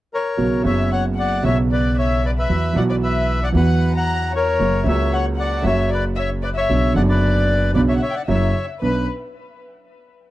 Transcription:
0.14 0.62 A#4 soft
0.14 0.63 C#5 medium
0.37 0.60 B1 soft
0.37 0.60 B2 soft
0.37 0.60 C#3 soft
0.37 0.60 F#3 soft
0.37 0.60 B3 soft
0.37 0.60 F#4 soft
0.62 1.40 F#1 medium
0.62 1.40 F#2 medium
0.62 1.39 C#3 soft
0.62 1.40 F#3 soft
0.62 1.40 B3 medium
0.62 0.90 C#5 soft
0.62 0.89 E5 soft
0.66 1.41 F#4 medium
0.66 0.90 E5 medium
0.92 1.04 C#5 soft
0.92 1.04 F#5 soft
0.92 1.04 F#5 medium
1.18 1.43 D5 medium
1.18 1.42 F#5 medium
1.18 1.44 F#5 medium
1.43 2.44 B1 medium
1.43 2.45 B1 medium
1.43 2.45 B2 medium
1.43 2.44 C#3 soft
1.43 2.44 F#3 medium
1.43 2.45 B3 soft
1.43 2.46 F#4 medium
1.43 1.57 C#5 soft
1.43 1.57 E5 medium
1.47 1.58 E5 medium
1.72 1.96 B4 soft
1.72 1.96 D5 medium
1.72 1.97 D5 medium
1.98 2.22 C#5 medium
1.98 2.22 E5 medium
1.98 2.25 E5 medium
2.26 2.31 B4 soft
2.26 2.31 D5 medium
2.39 2.74 B4 medium
2.39 2.75 E5 medium
2.39 2.79 E5 medium
2.49 2.72 E2 soft
2.49 2.72 E3 soft
2.49 2.72 F#3 soft
2.49 2.72 B3 soft
2.49 2.72 F#4 soft
2.73 3.51 B1 medium
2.73 3.51 B2 medium
2.73 3.50 E3 medium
2.73 3.50 F#3 soft
2.73 3.51 B3 medium
2.73 2.83 F#5 medium
2.77 3.52 F#4 medium
2.77 2.83 D5 medium
2.77 2.83 F#5 medium
2.89 2.96 B4 soft
2.89 2.95 D5 medium
2.89 2.96 D5 medium
3.03 3.40 B4 medium
3.03 3.44 E5 medium
3.03 3.40 E5 medium
3.43 3.49 D5 medium
3.43 3.49 F#5 medium
3.52 4.54 E2 medium
3.52 4.55 E2 medium
3.52 4.54 E3 medium
3.52 4.54 F#3 soft
3.52 4.55 B3 soft
3.52 3.92 F#5 medium
3.56 4.55 F#4 medium
3.56 3.92 B4 medium
3.95 4.32 F#5 medium
3.95 4.31 A#5 medium
3.95 4.32 A#5 medium
4.35 4.84 A#4 medium
4.35 4.83 C#5 medium
4.35 4.87 C#5 medium
4.59 4.82 F#1 medium
4.59 4.82 F#2 soft
4.59 4.82 C#3 soft
4.59 4.82 F#3 soft
4.59 4.82 A#3 soft
4.59 4.82 F#4 soft
4.84 5.61 C#2 medium
4.84 5.61 C#3 medium
4.84 5.60 F#3 medium
4.84 5.61 A#3 medium
4.84 5.62 F#4 medium
4.84 5.10 E5 medium
4.88 5.12 C#5 medium
4.88 5.14 E5 medium
5.13 5.26 C#5 medium
5.13 5.25 F#5 medium
5.38 5.64 D5 medium
5.38 5.63 F#5 medium
5.38 5.66 F#5 medium
5.62 6.64 F#1 medium
5.62 6.64 F#2 medium
5.62 6.63 C#3 medium
5.62 6.64 F#3 medium
5.62 6.64 A#3 soft
5.62 5.90 C#5 medium
5.62 5.89 E5 medium
5.62 5.90 E5 medium
5.66 6.65 F#4 medium
5.91 6.05 B4 medium
5.91 6.03 D5 medium
5.91 6.04 D5 medium
6.16 6.30 C#5 medium
6.16 6.28 E5 medium
6.16 6.30 E5 medium
6.43 6.50 B4 soft
6.43 6.49 D5 medium
6.56 6.93 C#5 medium
6.56 6.92 E5 medium
6.56 6.93 E5 medium
6.69 6.91 B1 soft
6.69 6.91 B1 medium
6.69 6.92 B2 soft
6.69 6.91 C#3 soft
6.69 6.91 F#3 soft
6.69 6.91 B3 soft
6.69 6.92 D4 soft
6.94 7.71 F#1 medium
6.94 7.71 F#2 medium
6.94 7.70 D3 medium
6.94 7.71 F#3 medium
6.94 7.71 B3 soft
6.94 7.03 D5 soft
6.94 7.02 F#5 medium
6.98 7.72 D4 medium
7.09 7.71 B4 medium
7.09 7.71 D5 medium
7.74 7.97 B1 medium
7.74 7.97 B2 medium
7.74 7.97 C#3 medium
7.74 7.97 F#3 soft
7.74 7.97 B3 soft
7.74 7.97 D4 medium
7.74 7.82 B4 soft
7.74 7.81 D5 medium
7.88 7.95 C#5 soft
7.88 7.95 E5 medium
7.95 8.01 F#5 medium
7.95 8.02 F#5 soft
8.01 8.14 C#5 soft
8.01 8.14 E5 medium
8.01 8.15 E5 medium
8.11 8.14 G5 soft
8.11 8.15 G5 soft
8.15 8.22 D5 medium
8.15 8.21 F#5 medium
8.15 8.22 F#5 medium
8.28 8.51 F#1 medium
8.28 8.50 F#2 medium
8.28 8.50 C#3 medium
8.28 8.51 F#3 medium
8.28 8.51 A#3 soft
8.28 8.51 E4 medium
8.28 8.66 C#5 soft
8.28 8.65 E5 medium
8.28 8.66 E5 medium
8.81 9.04 B1 soft
8.81 9.04 B3 soft
8.81 9.04 C#4 soft
8.81 9.04 D4 soft
8.81 9.06 B4 medium
8.81 9.07 B4 medium

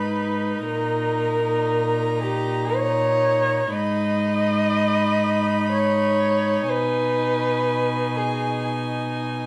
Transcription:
0.00 0.64 G#2 soft
0.00 3.71 D#4 soft
0.00 0.68 B4 medium
0.00 0.64 B5 soft
0.68 3.71 A#2 soft
0.68 2.24 A#4 medium
0.68 3.71 A#5 soft
2.22 2.77 G4 medium
2.76 3.76 C#5 medium
3.75 6.66 G#2 soft
3.75 9.46 D#4 soft
3.75 5.71 D#5 medium
3.75 6.66 B5 soft
5.72 6.72 C#5 medium
6.69 9.46 B2 soft
6.69 8.18 B4 medium
6.69 9.46 G#5 soft
8.16 8.64 G#4 medium

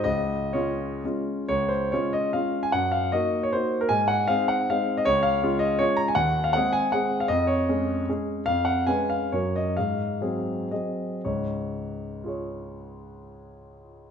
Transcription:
0.04 0.52 C#2 medium
0.04 0.53 D#5 medium
0.53 0.99 G#3 soft
0.53 1.00 C#4 soft
0.53 1.00 F4 soft
0.53 1.03 C#5 medium
1.04 1.45 G#3 soft
1.04 1.45 C#4 soft
1.04 1.46 F4 soft
1.48 1.90 C#2 medium
1.48 1.69 C#5 medium
1.69 1.90 C5 medium
1.92 2.30 G#3 soft
1.92 2.30 C#4 soft
1.92 2.30 F4 soft
1.92 2.13 C#5 medium
2.13 2.33 D#5 medium
2.33 2.69 G#3 soft
2.33 2.69 C#4 soft
2.33 2.70 F4 soft
2.33 2.63 F5 medium
2.63 2.73 G#5 medium
2.72 3.12 F#2 medium
2.72 2.92 F#5 medium
2.92 3.12 F5 medium
3.12 3.49 A#3 soft
3.12 3.49 D#4 soft
3.12 3.49 F#4 soft
3.12 3.42 D#5 medium
3.43 3.53 C#5 medium
3.53 3.87 A#3 soft
3.53 3.88 D#4 soft
3.53 3.88 F#4 soft
3.53 3.81 C5 medium
3.81 3.90 A#4 medium
3.89 4.28 G#2 medium
3.89 4.09 G#5 medium
4.08 4.29 F#5 medium
4.28 4.65 G#3 soft
4.28 4.65 C4 soft
4.28 4.66 D#4 medium
4.28 4.49 F5 medium
4.48 4.69 F#5 medium
4.70 5.04 G#3 soft
4.70 5.04 C4 soft
4.70 5.04 D#4 soft
4.70 4.98 F5 medium
4.97 5.06 D#5 medium
5.05 5.42 C#2 medium
5.05 5.24 C#5 loud
5.23 5.61 F5 medium
5.43 5.77 G#3 soft
5.43 5.77 C#4 medium
5.43 5.77 F4 medium
5.59 5.79 D#5 medium
5.79 6.13 G#3 soft
5.79 6.13 C#4 soft
5.79 6.13 F4 soft
5.79 5.98 C#5 medium
5.97 6.07 A#5 medium
6.08 6.17 G#5 medium
6.15 6.53 D#2 medium
6.15 6.44 F#5 medium
6.44 6.54 F5 medium
6.53 6.89 G#3 soft
6.53 6.89 C4 soft
6.53 6.90 G#4 medium
6.53 6.73 F#5 medium
6.73 6.92 G#5 medium
6.92 7.26 G#3 soft
6.92 7.26 C4 soft
6.92 7.27 G#4 soft
6.92 7.20 F#5 medium
7.20 7.30 F5 medium
7.28 7.67 F2 medium
7.28 7.48 D#5 medium
7.47 8.07 C#5 medium
7.69 8.04 G#3 soft
7.69 8.04 C#4 soft
7.69 8.05 G#4 medium
8.09 8.43 G#3 soft
8.09 8.43 C#4 soft
8.09 8.43 G#4 soft
8.46 8.87 F2 medium
8.46 8.66 F5 medium
8.65 8.87 F#5 medium
8.87 9.28 G#3 soft
8.87 9.28 C#4 soft
8.87 9.29 B4 soft
8.87 9.10 G#5 medium
9.10 9.32 F5 medium
9.32 9.74 F#2 soft
9.32 9.72 F#3 soft
9.32 9.72 C#4 soft
9.32 9.72 A#4 soft
9.32 9.54 C#5 medium
9.56 9.76 D#5 medium
9.77 10.20 G#2 soft
9.77 10.71 F5 medium
10.21 10.67 F#3 soft
10.21 10.68 C4 soft
10.21 10.68 G#4 soft
10.71 11.20 F#3 soft
10.71 11.20 C4 soft
10.71 11.20 G#4 soft
10.71 11.24 D#5 soft
11.24 14.11 C#2 soft
11.24 14.11 G#2 soft
11.24 12.26 C#5 soft
12.24 14.11 F4 soft
12.24 14.11 G#4 soft
12.28 14.11 C#5 soft

